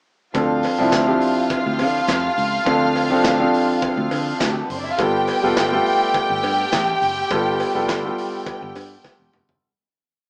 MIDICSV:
0, 0, Header, 1, 5, 480
1, 0, Start_track
1, 0, Tempo, 580271
1, 285, Time_signature, 4, 2, 24, 8
1, 8519, End_track
2, 0, Start_track
2, 0, Title_t, "Violin section"
2, 0, Program_c, 0, 48
2, 286, Note_on_c, 0, 65, 91
2, 288, Note_on_c, 0, 77, 107
2, 3626, Note_off_c, 0, 65, 0
2, 3627, Note_off_c, 0, 77, 0
2, 3710, Note_on_c, 0, 67, 66
2, 3712, Note_on_c, 0, 55, 55
2, 3767, Note_on_c, 0, 57, 61
2, 3770, Note_on_c, 0, 69, 62
2, 3773, Note_off_c, 0, 67, 0
2, 3774, Note_off_c, 0, 55, 0
2, 3827, Note_off_c, 0, 57, 0
2, 3828, Note_off_c, 0, 69, 0
2, 3834, Note_on_c, 0, 59, 68
2, 3836, Note_on_c, 0, 71, 82
2, 3888, Note_off_c, 0, 59, 0
2, 3889, Note_off_c, 0, 71, 0
2, 3891, Note_on_c, 0, 60, 66
2, 3891, Note_on_c, 0, 72, 76
2, 3946, Note_on_c, 0, 74, 73
2, 3951, Note_on_c, 0, 62, 76
2, 3952, Note_off_c, 0, 60, 0
2, 3952, Note_off_c, 0, 72, 0
2, 4009, Note_on_c, 0, 64, 78
2, 4012, Note_off_c, 0, 74, 0
2, 4013, Note_on_c, 0, 76, 95
2, 4014, Note_off_c, 0, 62, 0
2, 4064, Note_on_c, 0, 77, 106
2, 4066, Note_on_c, 0, 65, 95
2, 4067, Note_off_c, 0, 64, 0
2, 4070, Note_off_c, 0, 76, 0
2, 4123, Note_off_c, 0, 77, 0
2, 4124, Note_off_c, 0, 65, 0
2, 4131, Note_on_c, 0, 67, 85
2, 4131, Note_on_c, 0, 79, 111
2, 7694, Note_off_c, 0, 79, 0
2, 7695, Note_off_c, 0, 67, 0
2, 8519, End_track
3, 0, Start_track
3, 0, Title_t, "Grand piano"
3, 0, Program_c, 1, 0
3, 280, Note_on_c, 1, 53, 76
3, 285, Note_on_c, 1, 60, 67
3, 291, Note_on_c, 1, 62, 72
3, 293, Note_on_c, 1, 69, 83
3, 457, Control_c, 1, 64, 127
3, 578, Note_off_c, 1, 53, 0
3, 581, Note_off_c, 1, 60, 0
3, 584, Note_off_c, 1, 62, 0
3, 585, Note_off_c, 1, 69, 0
3, 648, Note_on_c, 1, 53, 88
3, 658, Note_on_c, 1, 60, 73
3, 658, Note_on_c, 1, 62, 78
3, 665, Note_on_c, 1, 64, 87
3, 843, Note_off_c, 1, 53, 0
3, 847, Note_off_c, 1, 60, 0
3, 847, Note_off_c, 1, 62, 0
3, 851, Note_off_c, 1, 64, 0
3, 881, Note_on_c, 1, 53, 76
3, 889, Note_on_c, 1, 60, 66
3, 890, Note_on_c, 1, 62, 70
3, 894, Note_on_c, 1, 67, 77
3, 1664, Note_off_c, 1, 53, 0
3, 1668, Note_off_c, 1, 60, 0
3, 1669, Note_off_c, 1, 62, 0
3, 1671, Note_off_c, 1, 67, 0
3, 2191, Note_on_c, 1, 53, 84
3, 2197, Note_on_c, 1, 60, 74
3, 2201, Note_on_c, 1, 62, 72
3, 2209, Note_on_c, 1, 69, 90
3, 2494, Note_off_c, 1, 53, 0
3, 2497, Note_off_c, 1, 60, 0
3, 2499, Note_off_c, 1, 62, 0
3, 2503, Note_off_c, 1, 69, 0
3, 2565, Note_on_c, 1, 53, 85
3, 2570, Note_on_c, 1, 60, 76
3, 2571, Note_on_c, 1, 62, 81
3, 2578, Note_on_c, 1, 69, 86
3, 2761, Note_off_c, 1, 53, 0
3, 2764, Note_off_c, 1, 60, 0
3, 2765, Note_off_c, 1, 62, 0
3, 2768, Note_off_c, 1, 69, 0
3, 2810, Note_on_c, 1, 60, 74
3, 2811, Note_on_c, 1, 53, 75
3, 2816, Note_on_c, 1, 62, 72
3, 2822, Note_on_c, 1, 69, 87
3, 3590, Note_off_c, 1, 60, 0
3, 3591, Note_off_c, 1, 53, 0
3, 3593, Note_off_c, 1, 62, 0
3, 3596, Note_off_c, 1, 69, 0
3, 4119, Note_on_c, 1, 55, 76
3, 4121, Note_on_c, 1, 59, 73
3, 4125, Note_on_c, 1, 65, 73
3, 4131, Note_on_c, 1, 69, 86
3, 4136, Control_c, 1, 64, 0
3, 4256, Control_c, 1, 64, 127
3, 4419, Note_off_c, 1, 55, 0
3, 4421, Note_off_c, 1, 59, 0
3, 4422, Note_off_c, 1, 65, 0
3, 4425, Note_off_c, 1, 69, 0
3, 4487, Note_on_c, 1, 55, 83
3, 4492, Note_on_c, 1, 59, 78
3, 4497, Note_on_c, 1, 65, 82
3, 4501, Note_on_c, 1, 69, 84
3, 4683, Note_off_c, 1, 55, 0
3, 4686, Note_off_c, 1, 59, 0
3, 4689, Note_off_c, 1, 65, 0
3, 4690, Note_off_c, 1, 69, 0
3, 4732, Note_on_c, 1, 57, 64
3, 4733, Note_on_c, 1, 55, 69
3, 4737, Note_on_c, 1, 65, 70
3, 4744, Note_on_c, 1, 69, 91
3, 4784, Note_off_c, 1, 57, 0
3, 4785, Note_on_c, 1, 59, 66
3, 5512, Note_off_c, 1, 55, 0
3, 5515, Note_off_c, 1, 65, 0
3, 5518, Note_off_c, 1, 69, 0
3, 5538, Note_off_c, 1, 59, 0
3, 6043, Note_on_c, 1, 55, 83
3, 6045, Note_on_c, 1, 59, 70
3, 6052, Note_on_c, 1, 65, 74
3, 6053, Note_on_c, 1, 69, 90
3, 6342, Note_off_c, 1, 55, 0
3, 6343, Note_off_c, 1, 59, 0
3, 6346, Note_off_c, 1, 65, 0
3, 6347, Note_off_c, 1, 69, 0
3, 6409, Note_on_c, 1, 55, 84
3, 6411, Note_on_c, 1, 59, 74
3, 6418, Note_on_c, 1, 65, 67
3, 6418, Note_on_c, 1, 69, 85
3, 6604, Note_off_c, 1, 55, 0
3, 6606, Note_off_c, 1, 59, 0
3, 6609, Note_off_c, 1, 65, 0
3, 6609, Note_off_c, 1, 69, 0
3, 6653, Note_on_c, 1, 55, 80
3, 6658, Note_on_c, 1, 59, 67
3, 6662, Note_on_c, 1, 65, 70
3, 6664, Note_on_c, 1, 69, 80
3, 7431, Note_off_c, 1, 55, 0
3, 7433, Note_off_c, 1, 59, 0
3, 7435, Note_off_c, 1, 65, 0
3, 7437, Note_off_c, 1, 69, 0
3, 7976, Control_c, 1, 64, 0
3, 8519, End_track
4, 0, Start_track
4, 0, Title_t, "Fingered electric bass"
4, 0, Program_c, 2, 33
4, 286, Note_on_c, 2, 38, 110
4, 539, Note_off_c, 2, 38, 0
4, 657, Note_on_c, 2, 36, 81
4, 733, Note_off_c, 2, 36, 0
4, 766, Note_on_c, 2, 38, 101
4, 932, Note_off_c, 2, 38, 0
4, 1375, Note_on_c, 2, 38, 104
4, 1491, Note_on_c, 2, 50, 90
4, 1503, Note_off_c, 2, 38, 0
4, 1654, Note_off_c, 2, 50, 0
4, 1726, Note_on_c, 2, 41, 100
4, 1891, Note_off_c, 2, 41, 0
4, 1966, Note_on_c, 2, 37, 90
4, 2131, Note_off_c, 2, 37, 0
4, 2206, Note_on_c, 2, 38, 113
4, 2574, Note_off_c, 2, 38, 0
4, 2574, Note_on_c, 2, 36, 91
4, 2652, Note_off_c, 2, 36, 0
4, 2688, Note_on_c, 2, 38, 81
4, 2853, Note_off_c, 2, 38, 0
4, 3287, Note_on_c, 2, 38, 112
4, 3367, Note_off_c, 2, 38, 0
4, 3405, Note_on_c, 2, 50, 97
4, 3571, Note_off_c, 2, 50, 0
4, 3646, Note_on_c, 2, 38, 107
4, 3812, Note_off_c, 2, 38, 0
4, 3886, Note_on_c, 2, 30, 90
4, 4052, Note_off_c, 2, 30, 0
4, 4126, Note_on_c, 2, 31, 121
4, 4380, Note_off_c, 2, 31, 0
4, 4496, Note_on_c, 2, 29, 87
4, 4573, Note_off_c, 2, 29, 0
4, 4609, Note_on_c, 2, 31, 90
4, 4774, Note_off_c, 2, 31, 0
4, 5211, Note_on_c, 2, 31, 101
4, 5290, Note_off_c, 2, 31, 0
4, 5322, Note_on_c, 2, 43, 100
4, 5490, Note_off_c, 2, 43, 0
4, 5565, Note_on_c, 2, 33, 96
4, 5732, Note_off_c, 2, 33, 0
4, 5805, Note_on_c, 2, 30, 91
4, 5971, Note_off_c, 2, 30, 0
4, 6046, Note_on_c, 2, 31, 127
4, 6300, Note_off_c, 2, 31, 0
4, 6411, Note_on_c, 2, 29, 96
4, 6529, Note_off_c, 2, 29, 0
4, 6529, Note_on_c, 2, 31, 99
4, 6694, Note_off_c, 2, 31, 0
4, 7132, Note_on_c, 2, 31, 100
4, 7211, Note_off_c, 2, 31, 0
4, 7242, Note_on_c, 2, 43, 100
4, 7409, Note_off_c, 2, 43, 0
4, 7607, Note_on_c, 2, 28, 84
4, 7686, Note_off_c, 2, 28, 0
4, 7723, Note_on_c, 2, 29, 77
4, 7811, Note_off_c, 2, 29, 0
4, 7848, Note_on_c, 2, 30, 94
4, 7927, Note_off_c, 2, 30, 0
4, 8519, End_track
5, 0, Start_track
5, 0, Title_t, "Drums"
5, 285, Note_on_c, 9, 42, 55
5, 287, Note_on_c, 9, 36, 92
5, 294, Note_on_c, 9, 56, 83
5, 368, Note_off_c, 9, 42, 0
5, 369, Note_off_c, 9, 36, 0
5, 377, Note_off_c, 9, 56, 0
5, 521, Note_on_c, 9, 46, 70
5, 535, Note_on_c, 9, 56, 74
5, 604, Note_off_c, 9, 46, 0
5, 617, Note_off_c, 9, 56, 0
5, 762, Note_on_c, 9, 38, 100
5, 764, Note_on_c, 9, 42, 62
5, 764, Note_on_c, 9, 56, 82
5, 767, Note_on_c, 9, 36, 114
5, 772, Note_on_c, 9, 39, 81
5, 844, Note_off_c, 9, 38, 0
5, 846, Note_off_c, 9, 42, 0
5, 847, Note_off_c, 9, 56, 0
5, 849, Note_off_c, 9, 36, 0
5, 854, Note_off_c, 9, 39, 0
5, 1005, Note_on_c, 9, 46, 62
5, 1088, Note_off_c, 9, 46, 0
5, 1242, Note_on_c, 9, 36, 114
5, 1243, Note_on_c, 9, 42, 77
5, 1249, Note_on_c, 9, 56, 74
5, 1325, Note_off_c, 9, 36, 0
5, 1326, Note_off_c, 9, 42, 0
5, 1331, Note_off_c, 9, 56, 0
5, 1480, Note_on_c, 9, 46, 69
5, 1483, Note_on_c, 9, 56, 72
5, 1562, Note_off_c, 9, 46, 0
5, 1565, Note_off_c, 9, 56, 0
5, 1718, Note_on_c, 9, 42, 64
5, 1723, Note_on_c, 9, 36, 98
5, 1723, Note_on_c, 9, 38, 101
5, 1728, Note_on_c, 9, 56, 77
5, 1733, Note_on_c, 9, 39, 81
5, 1801, Note_off_c, 9, 42, 0
5, 1806, Note_off_c, 9, 36, 0
5, 1806, Note_off_c, 9, 38, 0
5, 1810, Note_off_c, 9, 56, 0
5, 1816, Note_off_c, 9, 39, 0
5, 1968, Note_on_c, 9, 46, 64
5, 2051, Note_off_c, 9, 46, 0
5, 2203, Note_on_c, 9, 42, 58
5, 2204, Note_on_c, 9, 36, 107
5, 2208, Note_on_c, 9, 56, 85
5, 2286, Note_off_c, 9, 42, 0
5, 2287, Note_off_c, 9, 36, 0
5, 2290, Note_off_c, 9, 56, 0
5, 2445, Note_on_c, 9, 46, 70
5, 2447, Note_on_c, 9, 56, 70
5, 2528, Note_off_c, 9, 46, 0
5, 2529, Note_off_c, 9, 56, 0
5, 2679, Note_on_c, 9, 56, 82
5, 2683, Note_on_c, 9, 38, 109
5, 2685, Note_on_c, 9, 42, 61
5, 2687, Note_on_c, 9, 36, 112
5, 2693, Note_on_c, 9, 39, 90
5, 2762, Note_off_c, 9, 56, 0
5, 2766, Note_off_c, 9, 38, 0
5, 2768, Note_off_c, 9, 42, 0
5, 2770, Note_off_c, 9, 36, 0
5, 2776, Note_off_c, 9, 39, 0
5, 2931, Note_on_c, 9, 46, 62
5, 3014, Note_off_c, 9, 46, 0
5, 3162, Note_on_c, 9, 36, 116
5, 3163, Note_on_c, 9, 56, 68
5, 3165, Note_on_c, 9, 42, 73
5, 3245, Note_off_c, 9, 36, 0
5, 3246, Note_off_c, 9, 56, 0
5, 3248, Note_off_c, 9, 42, 0
5, 3402, Note_on_c, 9, 56, 69
5, 3403, Note_on_c, 9, 46, 64
5, 3484, Note_off_c, 9, 56, 0
5, 3486, Note_off_c, 9, 46, 0
5, 3640, Note_on_c, 9, 42, 62
5, 3642, Note_on_c, 9, 56, 74
5, 3645, Note_on_c, 9, 36, 108
5, 3645, Note_on_c, 9, 38, 114
5, 3655, Note_on_c, 9, 39, 88
5, 3723, Note_off_c, 9, 42, 0
5, 3725, Note_off_c, 9, 56, 0
5, 3727, Note_off_c, 9, 36, 0
5, 3728, Note_off_c, 9, 38, 0
5, 3738, Note_off_c, 9, 39, 0
5, 3889, Note_on_c, 9, 46, 63
5, 3971, Note_off_c, 9, 46, 0
5, 4122, Note_on_c, 9, 42, 59
5, 4125, Note_on_c, 9, 36, 102
5, 4132, Note_on_c, 9, 56, 81
5, 4205, Note_off_c, 9, 42, 0
5, 4208, Note_off_c, 9, 36, 0
5, 4214, Note_off_c, 9, 56, 0
5, 4361, Note_on_c, 9, 46, 66
5, 4370, Note_on_c, 9, 56, 71
5, 4444, Note_off_c, 9, 46, 0
5, 4452, Note_off_c, 9, 56, 0
5, 4605, Note_on_c, 9, 38, 104
5, 4606, Note_on_c, 9, 56, 79
5, 4607, Note_on_c, 9, 36, 106
5, 4607, Note_on_c, 9, 42, 60
5, 4615, Note_on_c, 9, 39, 84
5, 4688, Note_off_c, 9, 38, 0
5, 4688, Note_off_c, 9, 56, 0
5, 4690, Note_off_c, 9, 36, 0
5, 4690, Note_off_c, 9, 42, 0
5, 4698, Note_off_c, 9, 39, 0
5, 4849, Note_on_c, 9, 46, 60
5, 4932, Note_off_c, 9, 46, 0
5, 5081, Note_on_c, 9, 42, 65
5, 5082, Note_on_c, 9, 36, 108
5, 5084, Note_on_c, 9, 56, 69
5, 5164, Note_off_c, 9, 42, 0
5, 5165, Note_off_c, 9, 36, 0
5, 5167, Note_off_c, 9, 56, 0
5, 5318, Note_on_c, 9, 46, 72
5, 5323, Note_on_c, 9, 56, 69
5, 5401, Note_off_c, 9, 46, 0
5, 5406, Note_off_c, 9, 56, 0
5, 5560, Note_on_c, 9, 42, 67
5, 5561, Note_on_c, 9, 56, 75
5, 5564, Note_on_c, 9, 36, 102
5, 5565, Note_on_c, 9, 38, 113
5, 5574, Note_on_c, 9, 39, 80
5, 5642, Note_off_c, 9, 42, 0
5, 5644, Note_off_c, 9, 56, 0
5, 5647, Note_off_c, 9, 36, 0
5, 5647, Note_off_c, 9, 38, 0
5, 5657, Note_off_c, 9, 39, 0
5, 5807, Note_on_c, 9, 46, 60
5, 5890, Note_off_c, 9, 46, 0
5, 6042, Note_on_c, 9, 42, 58
5, 6044, Note_on_c, 9, 36, 96
5, 6047, Note_on_c, 9, 56, 85
5, 6125, Note_off_c, 9, 42, 0
5, 6127, Note_off_c, 9, 36, 0
5, 6130, Note_off_c, 9, 56, 0
5, 6285, Note_on_c, 9, 46, 63
5, 6289, Note_on_c, 9, 56, 72
5, 6368, Note_off_c, 9, 46, 0
5, 6372, Note_off_c, 9, 56, 0
5, 6522, Note_on_c, 9, 56, 79
5, 6525, Note_on_c, 9, 38, 115
5, 6527, Note_on_c, 9, 42, 62
5, 6528, Note_on_c, 9, 36, 112
5, 6535, Note_on_c, 9, 39, 79
5, 6604, Note_off_c, 9, 56, 0
5, 6608, Note_off_c, 9, 38, 0
5, 6610, Note_off_c, 9, 42, 0
5, 6611, Note_off_c, 9, 36, 0
5, 6618, Note_off_c, 9, 39, 0
5, 6769, Note_on_c, 9, 46, 64
5, 6852, Note_off_c, 9, 46, 0
5, 7002, Note_on_c, 9, 36, 111
5, 7004, Note_on_c, 9, 42, 72
5, 7006, Note_on_c, 9, 56, 70
5, 7084, Note_off_c, 9, 36, 0
5, 7086, Note_off_c, 9, 42, 0
5, 7089, Note_off_c, 9, 56, 0
5, 7241, Note_on_c, 9, 46, 70
5, 7247, Note_on_c, 9, 56, 74
5, 7324, Note_off_c, 9, 46, 0
5, 7329, Note_off_c, 9, 56, 0
5, 7482, Note_on_c, 9, 56, 76
5, 7483, Note_on_c, 9, 36, 88
5, 7484, Note_on_c, 9, 38, 57
5, 7564, Note_off_c, 9, 56, 0
5, 7565, Note_off_c, 9, 36, 0
5, 7566, Note_off_c, 9, 38, 0
5, 7721, Note_on_c, 9, 45, 82
5, 7804, Note_off_c, 9, 45, 0
5, 7849, Note_on_c, 9, 43, 88
5, 7932, Note_off_c, 9, 43, 0
5, 8519, End_track
0, 0, End_of_file